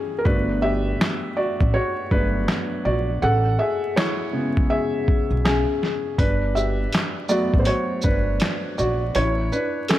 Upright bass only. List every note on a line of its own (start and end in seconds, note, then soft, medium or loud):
0.26 0.92 G1 loud
1.61 1.73 A1 medium
2.12 2.44 G1 medium
2.85 3.18 A#1 medium
3.22 3.55 A1 loud
5.30 5.63 B1 medium
6.19 6.84 G1 loud
7.54 7.66 A1 medium
8.05 8.37 G1 medium
8.79 9.11 A#1 medium
9.15 9.48 A1 loud